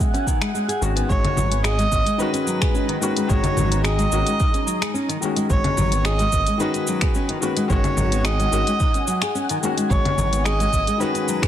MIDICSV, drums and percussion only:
0, 0, Header, 1, 2, 480
1, 0, Start_track
1, 0, Key_signature, 5, "minor"
1, 0, Tempo, 550459
1, 955, Time_signature, 4, 2, 24, 8
1, 10009, End_track
2, 0, Start_track
2, 0, Title_t, "Drums"
2, 0, Note_on_c, 9, 36, 94
2, 3, Note_on_c, 9, 69, 41
2, 83, Note_off_c, 9, 36, 0
2, 90, Note_off_c, 9, 69, 0
2, 126, Note_on_c, 9, 42, 30
2, 129, Note_on_c, 9, 69, 27
2, 213, Note_off_c, 9, 42, 0
2, 216, Note_off_c, 9, 69, 0
2, 235, Note_on_c, 9, 36, 54
2, 241, Note_on_c, 9, 69, 76
2, 323, Note_off_c, 9, 36, 0
2, 329, Note_off_c, 9, 69, 0
2, 362, Note_on_c, 9, 26, 79
2, 362, Note_on_c, 9, 42, 61
2, 366, Note_on_c, 9, 69, 34
2, 449, Note_off_c, 9, 26, 0
2, 449, Note_off_c, 9, 42, 0
2, 453, Note_off_c, 9, 69, 0
2, 480, Note_on_c, 9, 69, 45
2, 567, Note_off_c, 9, 69, 0
2, 604, Note_on_c, 9, 42, 50
2, 607, Note_on_c, 9, 69, 30
2, 691, Note_off_c, 9, 42, 0
2, 694, Note_off_c, 9, 69, 0
2, 718, Note_on_c, 9, 69, 76
2, 805, Note_off_c, 9, 69, 0
2, 843, Note_on_c, 9, 42, 58
2, 846, Note_on_c, 9, 69, 33
2, 930, Note_off_c, 9, 42, 0
2, 933, Note_off_c, 9, 69, 0
2, 955, Note_on_c, 9, 36, 116
2, 961, Note_on_c, 9, 69, 44
2, 1042, Note_off_c, 9, 36, 0
2, 1048, Note_off_c, 9, 69, 0
2, 1086, Note_on_c, 9, 42, 46
2, 1086, Note_on_c, 9, 64, 78
2, 1173, Note_off_c, 9, 42, 0
2, 1173, Note_off_c, 9, 64, 0
2, 1196, Note_on_c, 9, 64, 62
2, 1199, Note_on_c, 9, 69, 80
2, 1283, Note_off_c, 9, 64, 0
2, 1286, Note_off_c, 9, 69, 0
2, 1322, Note_on_c, 9, 42, 60
2, 1325, Note_on_c, 9, 69, 34
2, 1409, Note_off_c, 9, 42, 0
2, 1412, Note_off_c, 9, 69, 0
2, 1433, Note_on_c, 9, 26, 85
2, 1436, Note_on_c, 9, 69, 44
2, 1520, Note_off_c, 9, 26, 0
2, 1523, Note_off_c, 9, 69, 0
2, 1559, Note_on_c, 9, 42, 33
2, 1563, Note_on_c, 9, 69, 29
2, 1647, Note_off_c, 9, 42, 0
2, 1650, Note_off_c, 9, 69, 0
2, 1674, Note_on_c, 9, 36, 64
2, 1676, Note_on_c, 9, 69, 77
2, 1761, Note_off_c, 9, 36, 0
2, 1763, Note_off_c, 9, 69, 0
2, 1800, Note_on_c, 9, 42, 55
2, 1804, Note_on_c, 9, 69, 32
2, 1888, Note_off_c, 9, 42, 0
2, 1891, Note_off_c, 9, 69, 0
2, 1914, Note_on_c, 9, 69, 45
2, 2001, Note_off_c, 9, 69, 0
2, 2039, Note_on_c, 9, 42, 32
2, 2042, Note_on_c, 9, 69, 29
2, 2126, Note_off_c, 9, 42, 0
2, 2129, Note_off_c, 9, 69, 0
2, 2157, Note_on_c, 9, 69, 78
2, 2244, Note_off_c, 9, 69, 0
2, 2281, Note_on_c, 9, 36, 105
2, 2282, Note_on_c, 9, 26, 87
2, 2282, Note_on_c, 9, 42, 59
2, 2285, Note_on_c, 9, 69, 36
2, 2368, Note_off_c, 9, 36, 0
2, 2369, Note_off_c, 9, 26, 0
2, 2369, Note_off_c, 9, 42, 0
2, 2372, Note_off_c, 9, 69, 0
2, 2397, Note_on_c, 9, 69, 47
2, 2485, Note_off_c, 9, 69, 0
2, 2521, Note_on_c, 9, 42, 48
2, 2608, Note_off_c, 9, 42, 0
2, 2637, Note_on_c, 9, 69, 80
2, 2724, Note_off_c, 9, 69, 0
2, 2760, Note_on_c, 9, 42, 59
2, 2764, Note_on_c, 9, 69, 34
2, 2848, Note_off_c, 9, 42, 0
2, 2851, Note_off_c, 9, 69, 0
2, 2876, Note_on_c, 9, 36, 113
2, 2876, Note_on_c, 9, 69, 46
2, 2963, Note_off_c, 9, 36, 0
2, 2963, Note_off_c, 9, 69, 0
2, 2997, Note_on_c, 9, 42, 46
2, 2997, Note_on_c, 9, 64, 76
2, 3000, Note_on_c, 9, 69, 35
2, 3084, Note_off_c, 9, 42, 0
2, 3084, Note_off_c, 9, 64, 0
2, 3087, Note_off_c, 9, 69, 0
2, 3113, Note_on_c, 9, 64, 62
2, 3116, Note_on_c, 9, 69, 82
2, 3200, Note_off_c, 9, 64, 0
2, 3203, Note_off_c, 9, 69, 0
2, 3241, Note_on_c, 9, 42, 63
2, 3245, Note_on_c, 9, 69, 37
2, 3329, Note_off_c, 9, 42, 0
2, 3332, Note_off_c, 9, 69, 0
2, 3353, Note_on_c, 9, 26, 83
2, 3356, Note_on_c, 9, 69, 46
2, 3440, Note_off_c, 9, 26, 0
2, 3444, Note_off_c, 9, 69, 0
2, 3478, Note_on_c, 9, 42, 31
2, 3481, Note_on_c, 9, 69, 32
2, 3565, Note_off_c, 9, 42, 0
2, 3568, Note_off_c, 9, 69, 0
2, 3594, Note_on_c, 9, 69, 87
2, 3681, Note_off_c, 9, 69, 0
2, 3720, Note_on_c, 9, 42, 57
2, 3723, Note_on_c, 9, 69, 35
2, 3807, Note_off_c, 9, 42, 0
2, 3810, Note_off_c, 9, 69, 0
2, 3835, Note_on_c, 9, 69, 49
2, 3837, Note_on_c, 9, 36, 112
2, 3922, Note_off_c, 9, 69, 0
2, 3925, Note_off_c, 9, 36, 0
2, 3959, Note_on_c, 9, 42, 31
2, 3963, Note_on_c, 9, 69, 30
2, 4047, Note_off_c, 9, 42, 0
2, 4050, Note_off_c, 9, 69, 0
2, 4078, Note_on_c, 9, 69, 90
2, 4165, Note_off_c, 9, 69, 0
2, 4203, Note_on_c, 9, 26, 85
2, 4203, Note_on_c, 9, 42, 59
2, 4206, Note_on_c, 9, 69, 36
2, 4290, Note_off_c, 9, 26, 0
2, 4290, Note_off_c, 9, 42, 0
2, 4293, Note_off_c, 9, 69, 0
2, 4318, Note_on_c, 9, 69, 50
2, 4406, Note_off_c, 9, 69, 0
2, 4443, Note_on_c, 9, 42, 48
2, 4446, Note_on_c, 9, 69, 33
2, 4530, Note_off_c, 9, 42, 0
2, 4534, Note_off_c, 9, 69, 0
2, 4556, Note_on_c, 9, 69, 84
2, 4644, Note_off_c, 9, 69, 0
2, 4678, Note_on_c, 9, 42, 60
2, 4682, Note_on_c, 9, 69, 35
2, 4766, Note_off_c, 9, 42, 0
2, 4769, Note_off_c, 9, 69, 0
2, 4796, Note_on_c, 9, 36, 122
2, 4797, Note_on_c, 9, 69, 46
2, 4883, Note_off_c, 9, 36, 0
2, 4884, Note_off_c, 9, 69, 0
2, 4921, Note_on_c, 9, 42, 45
2, 4921, Note_on_c, 9, 64, 78
2, 5008, Note_off_c, 9, 42, 0
2, 5008, Note_off_c, 9, 64, 0
2, 5034, Note_on_c, 9, 64, 63
2, 5037, Note_on_c, 9, 69, 85
2, 5121, Note_off_c, 9, 64, 0
2, 5124, Note_off_c, 9, 69, 0
2, 5161, Note_on_c, 9, 42, 56
2, 5165, Note_on_c, 9, 69, 37
2, 5249, Note_off_c, 9, 42, 0
2, 5252, Note_off_c, 9, 69, 0
2, 5274, Note_on_c, 9, 26, 76
2, 5277, Note_on_c, 9, 69, 48
2, 5361, Note_off_c, 9, 26, 0
2, 5365, Note_off_c, 9, 69, 0
2, 5398, Note_on_c, 9, 42, 30
2, 5401, Note_on_c, 9, 69, 33
2, 5485, Note_off_c, 9, 42, 0
2, 5488, Note_off_c, 9, 69, 0
2, 5515, Note_on_c, 9, 69, 86
2, 5516, Note_on_c, 9, 36, 68
2, 5602, Note_off_c, 9, 69, 0
2, 5603, Note_off_c, 9, 36, 0
2, 5638, Note_on_c, 9, 42, 55
2, 5641, Note_on_c, 9, 69, 36
2, 5725, Note_off_c, 9, 42, 0
2, 5728, Note_off_c, 9, 69, 0
2, 5755, Note_on_c, 9, 69, 47
2, 5842, Note_off_c, 9, 69, 0
2, 5878, Note_on_c, 9, 42, 28
2, 5881, Note_on_c, 9, 69, 31
2, 5965, Note_off_c, 9, 42, 0
2, 5968, Note_off_c, 9, 69, 0
2, 5992, Note_on_c, 9, 69, 86
2, 6080, Note_off_c, 9, 69, 0
2, 6115, Note_on_c, 9, 26, 83
2, 6115, Note_on_c, 9, 42, 54
2, 6118, Note_on_c, 9, 69, 37
2, 6121, Note_on_c, 9, 36, 102
2, 6202, Note_off_c, 9, 26, 0
2, 6202, Note_off_c, 9, 42, 0
2, 6205, Note_off_c, 9, 69, 0
2, 6208, Note_off_c, 9, 36, 0
2, 6231, Note_on_c, 9, 69, 49
2, 6318, Note_off_c, 9, 69, 0
2, 6356, Note_on_c, 9, 42, 48
2, 6444, Note_off_c, 9, 42, 0
2, 6474, Note_on_c, 9, 69, 83
2, 6561, Note_off_c, 9, 69, 0
2, 6597, Note_on_c, 9, 42, 57
2, 6600, Note_on_c, 9, 69, 34
2, 6684, Note_off_c, 9, 42, 0
2, 6688, Note_off_c, 9, 69, 0
2, 6715, Note_on_c, 9, 36, 123
2, 6715, Note_on_c, 9, 69, 46
2, 6802, Note_off_c, 9, 36, 0
2, 6803, Note_off_c, 9, 69, 0
2, 6837, Note_on_c, 9, 42, 41
2, 6837, Note_on_c, 9, 64, 75
2, 6840, Note_on_c, 9, 69, 33
2, 6924, Note_off_c, 9, 42, 0
2, 6924, Note_off_c, 9, 64, 0
2, 6928, Note_off_c, 9, 69, 0
2, 6951, Note_on_c, 9, 64, 64
2, 6954, Note_on_c, 9, 69, 82
2, 7038, Note_off_c, 9, 64, 0
2, 7041, Note_off_c, 9, 69, 0
2, 7081, Note_on_c, 9, 42, 56
2, 7085, Note_on_c, 9, 69, 37
2, 7168, Note_off_c, 9, 42, 0
2, 7172, Note_off_c, 9, 69, 0
2, 7191, Note_on_c, 9, 26, 83
2, 7194, Note_on_c, 9, 69, 50
2, 7278, Note_off_c, 9, 26, 0
2, 7282, Note_off_c, 9, 69, 0
2, 7321, Note_on_c, 9, 42, 30
2, 7325, Note_on_c, 9, 69, 32
2, 7408, Note_off_c, 9, 42, 0
2, 7412, Note_off_c, 9, 69, 0
2, 7436, Note_on_c, 9, 69, 88
2, 7523, Note_off_c, 9, 69, 0
2, 7561, Note_on_c, 9, 42, 54
2, 7564, Note_on_c, 9, 69, 35
2, 7648, Note_off_c, 9, 42, 0
2, 7651, Note_off_c, 9, 69, 0
2, 7673, Note_on_c, 9, 69, 50
2, 7675, Note_on_c, 9, 36, 110
2, 7761, Note_off_c, 9, 69, 0
2, 7762, Note_off_c, 9, 36, 0
2, 7798, Note_on_c, 9, 42, 29
2, 7801, Note_on_c, 9, 69, 31
2, 7885, Note_off_c, 9, 42, 0
2, 7888, Note_off_c, 9, 69, 0
2, 7914, Note_on_c, 9, 69, 89
2, 8001, Note_off_c, 9, 69, 0
2, 8037, Note_on_c, 9, 26, 86
2, 8037, Note_on_c, 9, 42, 55
2, 8040, Note_on_c, 9, 69, 35
2, 8124, Note_off_c, 9, 26, 0
2, 8124, Note_off_c, 9, 42, 0
2, 8127, Note_off_c, 9, 69, 0
2, 8156, Note_on_c, 9, 69, 50
2, 8244, Note_off_c, 9, 69, 0
2, 8279, Note_on_c, 9, 42, 44
2, 8282, Note_on_c, 9, 69, 36
2, 8366, Note_off_c, 9, 42, 0
2, 8370, Note_off_c, 9, 69, 0
2, 8400, Note_on_c, 9, 69, 83
2, 8487, Note_off_c, 9, 69, 0
2, 8524, Note_on_c, 9, 42, 54
2, 8528, Note_on_c, 9, 69, 37
2, 8612, Note_off_c, 9, 42, 0
2, 8615, Note_off_c, 9, 69, 0
2, 8636, Note_on_c, 9, 36, 113
2, 8641, Note_on_c, 9, 69, 44
2, 8723, Note_off_c, 9, 36, 0
2, 8729, Note_off_c, 9, 69, 0
2, 8767, Note_on_c, 9, 42, 43
2, 8767, Note_on_c, 9, 64, 79
2, 8854, Note_off_c, 9, 42, 0
2, 8854, Note_off_c, 9, 64, 0
2, 8877, Note_on_c, 9, 64, 65
2, 8880, Note_on_c, 9, 69, 84
2, 8964, Note_off_c, 9, 64, 0
2, 8967, Note_off_c, 9, 69, 0
2, 9005, Note_on_c, 9, 42, 54
2, 9009, Note_on_c, 9, 69, 36
2, 9093, Note_off_c, 9, 42, 0
2, 9096, Note_off_c, 9, 69, 0
2, 9117, Note_on_c, 9, 26, 73
2, 9120, Note_on_c, 9, 69, 46
2, 9204, Note_off_c, 9, 26, 0
2, 9207, Note_off_c, 9, 69, 0
2, 9245, Note_on_c, 9, 42, 31
2, 9248, Note_on_c, 9, 69, 32
2, 9332, Note_off_c, 9, 42, 0
2, 9335, Note_off_c, 9, 69, 0
2, 9355, Note_on_c, 9, 36, 59
2, 9358, Note_on_c, 9, 69, 84
2, 9442, Note_off_c, 9, 36, 0
2, 9445, Note_off_c, 9, 69, 0
2, 9482, Note_on_c, 9, 42, 52
2, 9485, Note_on_c, 9, 69, 35
2, 9569, Note_off_c, 9, 42, 0
2, 9572, Note_off_c, 9, 69, 0
2, 9599, Note_on_c, 9, 69, 45
2, 9686, Note_off_c, 9, 69, 0
2, 9723, Note_on_c, 9, 42, 29
2, 9726, Note_on_c, 9, 69, 30
2, 9810, Note_off_c, 9, 42, 0
2, 9813, Note_off_c, 9, 69, 0
2, 9839, Note_on_c, 9, 69, 86
2, 9926, Note_off_c, 9, 69, 0
2, 9961, Note_on_c, 9, 36, 98
2, 9967, Note_on_c, 9, 26, 79
2, 9967, Note_on_c, 9, 42, 55
2, 9970, Note_on_c, 9, 69, 33
2, 10009, Note_off_c, 9, 26, 0
2, 10009, Note_off_c, 9, 36, 0
2, 10009, Note_off_c, 9, 42, 0
2, 10009, Note_off_c, 9, 69, 0
2, 10009, End_track
0, 0, End_of_file